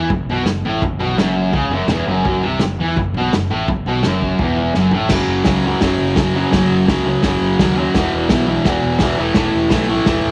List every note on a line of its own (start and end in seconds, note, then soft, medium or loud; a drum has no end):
0.10 0.25 F#1 medium
0.10 0.24 F#2 medium
0.10 kick loud
0.10 floor tom medium
0.26 0.43 B1 medium
0.26 floor tom medium
0.30 0.46 B2 loud
0.44 0.61 F#1 medium
0.44 0.61 F#2 medium
0.44 snare loud
0.44 floor tom medium
0.62 0.79 A1 medium
0.62 0.82 A2 medium
0.62 floor tom medium
0.82 0.98 F#1 medium
0.82 0.97 F#2 medium
0.82 kick loud
0.82 floor tom medium
0.99 1.16 B1 medium
0.99 1.17 B2 loud
0.99 floor tom medium
1.17 1.50 F#1 loud
1.17 1.53 F#2 loud
1.17 snare loud
1.17 floor tom medium
1.36 floor tom medium
1.53 1.68 C#2 medium
1.53 1.70 C#3 loud
1.53 kick loud
1.53 floor tom medium
1.69 1.86 F#1 medium
1.69 1.89 F#2 loud
1.69 floor tom medium
1.87 2.05 E1 medium
1.87 2.07 E2 loud
1.87 snare loud
1.87 floor tom medium
2.07 2.24 F#1 medium
2.07 2.23 F#2 loud
2.07 floor tom medium
2.24 2.42 F#1 medium
2.24 2.42 F#2 loud
2.24 kick loud
2.24 floor tom medium
2.42 2.59 C2 medium
2.42 2.60 C3 loud
2.42 floor tom medium
2.59 2.77 F#1 medium
2.59 2.76 F#2 medium
2.59 snare loud
2.59 floor tom medium
2.78 2.95 E2 medium
2.78 2.97 E3 medium
2.78 floor tom medium
2.96 3.13 F#1 medium
2.96 3.12 F#2 medium
2.96 kick loud
2.96 floor tom medium
3.14 3.29 B1 medium
3.14 3.33 B2 loud
3.14 floor tom medium
3.30 3.48 F#1 medium
3.30 snare loud
3.30 floor tom medium
3.34 3.48 F#2 medium
3.50 3.67 A1 medium
3.50 3.67 A2 loud
3.50 floor tom medium
3.68 3.85 F#1 medium
3.68 3.83 F#2 medium
3.68 kick loud
3.68 floor tom medium
3.86 4.03 B1 loud
3.86 4.04 B2 loud
3.86 floor tom medium
4.03 4.38 F#1 loud
4.03 4.39 F#2 loud
4.03 snare loud
4.03 floor tom medium
4.22 kick medium
4.22 floor tom medium
4.39 4.72 E1 medium
4.39 4.74 E2 loud
4.39 kick loud
4.39 floor tom medium
4.57 floor tom medium
4.74 4.92 F#1 loud
4.74 4.92 F#2 loud
4.74 snare medium
4.91 5.10 A1 medium
4.91 5.10 A2 loud
4.91 floor tom medium
5.09 5.24 F#1 medium
5.09 5.44 F#2 loud
5.09 5.45 C#3 loud
5.09 5.46 F#3 loud
5.09 kick loud
5.09 snare loud
5.09 crash loud
5.27 5.41 F#1 loud
5.45 5.74 C#2 loud
5.45 5.64 F#2 loud
5.45 5.64 C#3 medium
5.45 5.65 F#3 loud
5.45 kick loud
5.45 snare loud
5.45 open hi-hat medium
5.64 5.81 F#2 medium
5.64 5.81 C#3 medium
5.64 5.82 F#3 loud
5.81 5.96 F#1 medium
5.81 6.16 F#2 loud
5.81 6.18 C#3 loud
5.81 6.19 F#3 loud
5.81 kick loud
5.81 snare loud
5.81 open hi-hat medium
6.01 6.14 F#1 medium
6.16 6.44 F#2 medium
6.16 6.33 F#2 medium
6.16 6.34 C#3 medium
6.16 6.35 F#3 loud
6.16 kick loud
6.16 snare loud
6.16 open hi-hat medium
6.35 6.49 F#2 medium
6.35 6.50 C#3 loud
6.35 6.52 F#3 medium
6.51 6.67 F#1 medium
6.51 6.85 F#2 loud
6.51 6.87 C#3 loud
6.51 6.88 F#3 loud
6.51 kick loud
6.51 snare loud
6.51 open hi-hat medium
6.71 6.84 F#1 medium
6.87 7.16 C#2 medium
6.87 7.03 F#2 loud
6.87 7.04 C#3 loud
6.87 7.05 F#3 loud
6.87 kick loud
6.87 snare loud
6.87 open hi-hat medium
7.04 7.22 F#2 medium
7.04 7.23 C#3 medium
7.04 7.24 F#3 medium
7.23 7.37 F#1 loud
7.23 7.59 F#2 loud
7.23 7.60 C#3 loud
7.23 7.61 F#3 loud
7.23 kick loud
7.23 snare loud
7.23 open hi-hat medium
7.40 7.54 F#1 medium
7.59 7.86 D#2 medium
7.59 7.75 F#2 medium
7.59 7.76 C#3 medium
7.59 7.78 F#3 loud
7.59 kick loud
7.59 snare loud
7.59 open hi-hat medium
7.76 7.93 F#2 medium
7.76 7.94 C#3 loud
7.76 7.94 F#3 loud
7.94 8.08 E1 medium
7.94 8.29 E2 loud
7.94 8.29 B2 loud
7.94 8.31 E3 loud
7.94 kick loud
7.94 snare loud
7.94 open hi-hat medium
8.14 8.26 E1 medium
8.29 8.57 B1 loud
8.29 8.47 E2 loud
8.29 8.47 B2 loud
8.29 8.48 E3 loud
8.29 kick loud
8.29 snare loud
8.29 open hi-hat medium
8.47 8.64 E2 medium
8.47 8.65 B2 medium
8.47 8.66 E3 medium
8.65 8.79 E1 medium
8.65 8.99 E2 loud
8.65 9.01 B2 loud
8.65 9.02 E3 loud
8.65 kick loud
8.65 snare loud
8.65 open hi-hat medium
8.84 8.97 E1 medium
8.99 9.17 E2 medium
8.99 9.14 E2 loud
8.99 9.17 B2 loud
8.99 kick loud
8.99 snare loud
8.99 open hi-hat medium
9.03 9.18 E3 loud
9.18 9.33 E1 medium
9.18 9.34 A2 loud
9.18 9.35 E3 loud
9.18 9.37 A3 medium
9.34 9.50 E1 loud
9.34 9.69 A2 loud
9.34 9.70 E3 loud
9.34 9.72 A3 loud
9.34 kick loud
9.34 snare loud
9.34 open hi-hat medium
9.55 9.68 E1 medium
9.70 9.98 B1 loud
9.70 9.86 A2 medium
9.70 9.87 E3 loud
9.70 9.89 A3 loud
9.70 kick loud
9.70 snare loud
9.70 open hi-hat medium
9.87 10.05 A2 medium
9.87 10.06 E3 medium
9.87 10.07 A3 medium
10.06 10.20 E1 medium
10.06 10.31 A2 loud
10.06 10.31 E3 loud
10.06 10.31 A3 loud
10.06 kick loud
10.06 snare loud
10.06 open hi-hat medium
10.25 10.31 E1 medium